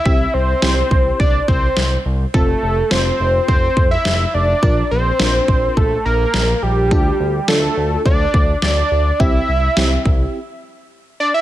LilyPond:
<<
  \new Staff \with { instrumentName = "Analog synth lead" } { \time 4/4 \key c \mixolydian \tempo 4 = 105 e''8 c''4. d''8 c''4 r8 | a'4 c''4 c''8. e''8. d''8~ | d''8 c''4. a'8 bes'4 g'8~ | g'4 a'4 d''4 d''4 |
e''2 r4. d''16 e''16 | }
  \new Staff \with { instrumentName = "FM electric piano" } { \time 4/4 \key c \mixolydian <c' e' g'>8 r8 <c' e' g'>4 r2 | <c' f' a'>8 r8 <c' f' c''>4 r2 | <d' f' bes'>8 r8 <d' f' bes'>4 r2 | <d' f' a'>8 r8 <d' f' a'>4 r2 |
<c' e' g'>8 r8 <c' e' g'>4 r2 | }
  \new Staff \with { instrumentName = "Analog synth bass" } { \clef bass \time 4/4 \key c \mixolydian c,8 c,8 c,8 c,8 c,8 c,8 c,8 c,8 | f,,8 f,,8 f,,8 f,,8 f,,8 f,,8 f,,8 f,,8 | bes,,8 bes,,8 bes,,8 bes,,8 bes,,8 bes,,8 bes,,8 bes,,8 | d,8 d,8 d,8 d,8 d,8 d,8 d,8 d,8 |
c,8 c,8 c,8 c,8 r2 | }
  \new DrumStaff \with { instrumentName = "Drums" } \drummode { \time 4/4 bd4 sn8 bd8 bd8 bd8 sn4 | bd4 sn4 bd8 bd8 sn4 | bd4 sn8 bd8 bd4 sn4 | bd4 sn4 bd8 bd8 sn4 |
bd4 sn8 bd8 r4 r4 | }
>>